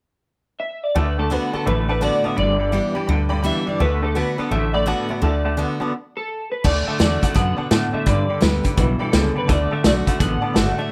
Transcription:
0.60 E5
0.83 D5
0.95 D2 D3 A3 B4 D5 F#5 A5
1.18 D3 A3 A4 D5 F#5 A5
1.30 D3 A3 B3 D4 F#4 B4 D5 F#5 A5
1.53 D3 B3 D4 F#4 A4 D5 F#5 A5, muted upright bass stroke
1.66 A1 A2 D3 A3 B4 D5 F#5 A5
1.88 D3 A3 B4 D5 F#5 A5
2.01 D3 A3 B3 D4 F#4 D5 F#5 A5
2.23 D3 B3 D4 F#4 D5 E5 F#5 A5, muted upright bass stroke
2.36 G1 G2 D3 D5 G5 B5
2.59 G2 D3 D5 G5 B5
2.72 G2 E3 G3 B3 D4 G4 D5 G5 B5
2.94 G2 E3 D4 G4 D5 G5 B5, muted upright bass stroke
3.06 D2 G2 D3 D5 G5 B5
3.29 G2 D3 D5 G5 B5
3.42 G2 E3 G3 B3 D4 G4 D5 G5 B5
3.46 E5
3.66 G2 E3 D4 G4 D5 G5 D6, muted upright bass stroke
3.79 D2 D3 A3 B4 D5 F#5 A5
4.02 D3 A3 A4 D5 F#5 A5
4.15 D3 A3 B3 D4 F#4 B4 D5 F#5 A5
4.37 D3 B3 D4 F#4 A4 D5 F#5 B5, muted upright bass stroke
4.50 A1 A2 D3 A3 D5 E5 F#5 A5
4.73 D3 A3 D5 F#5 B5
4.86 D3 A3 B3 D4 F#4 D5 F#5 A5
5.09 D3 B3 D4 F#4 D5 E5 F#5 A5, muted upright bass stroke
5.22 D2 D3 A3 D5 F#5 A5
5.44 D3 A3 D5 F#5 A5
5.57 D3 A3 B3 D4 F#4 D5 F#5 A5
5.80 D3 B3 D4 F#4 D5 F#5 A5, muted upright bass stroke
6.17 A4
6.52 B4
6.64 D2 D3 A3 D5 F#5 A5, kick, crash
6.87 D3 A3 D5 E5 F#5 A5
6.99 E2 D3 A3 D4 F#4 D5 F#5 A5, snare, closed hi-hat
7.22 D3 A3 D4 F#4 D5 F#5 A5, kick, closed hi-hat
7.34 F#2 B2 D3 B3 D5 F#5 A5, kick, closed hi-hat
7.57 D3 B3 D5 F#5 A5, muted upright bass stroke
7.71 A2 D3 A3 D5 F#5 A5, snare, closed hi-hat
7.92 D3 A3 D5 E5 F#5 A5, muted upright bass stroke
8.06 G2 D3 D5 G5 B5, kick, closed hi-hat
8.29 G2 D3 D5 G5 B5, muted upright bass stroke
8.41 D2 G2 D3 G3 B3 D4 G4 B4 D5 G5 B5, snare, closed hi-hat
8.63 G2 D3 D4 G4 D5 G5 B5, kick, closed hi-hat
8.76 B1 G2 B2 E3 B4 D5 G5 B5, kick, closed hi-hat
8.99 G2 E3 A4 D5 G5 B5, muted upright bass stroke
9.12 C#2 G2 C#3 D3 D5 G5 B5, snare, closed hi-hat
9.35 G2 D3 B4 D5 G5 B5
9.47 D2 D3 A3 D5 F#5 A5, kick, closed hi-hat
9.70 D3 A3 D5 E5 F#5 A5, muted upright bass stroke
9.83 B1 D3 A3 D4 F#4 D5 F#5 A5, snare, closed hi-hat
10.05 D3 A3 D4 F#4 D5 F#5 B5, kick, closed hi-hat
10.19 A1 A2 D3 B3 D5 F#5 A5, kick, closed hi-hat
10.41 D3 B3 D5 F#5 A5, muted upright bass stroke
10.54 G1 D3 A3 D4 D5 F#5 A5, snare, closed hi-hat
10.58 F#4
10.77 D3 A3 D4 F#4 D5 E5 F#5 A5, muted upright bass stroke

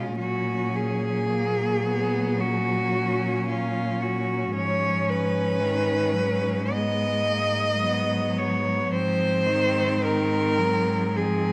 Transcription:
Already playing: B2 G#3 C#4 F4
0.15 A#2 F#3 C#4
0.19 F#4
0.75 G#4
1.28 A#3
1.84 B3
2.38 C#4 F#4
3.48 F4
4.01 F#4
4.53 G#2 F3 C#4 C#5
5.09 B4
5.59 D#3
6.13 F#3
6.69 G#3 B3 D#5
7.26 A#3
7.81 F#3 B3
8.38 C#5
8.89 G#2 F3 C4
8.94 C5
9.46 D#3
10.02 D#3 A#4
10.58 F#3
11.16 F3 C4 G#4

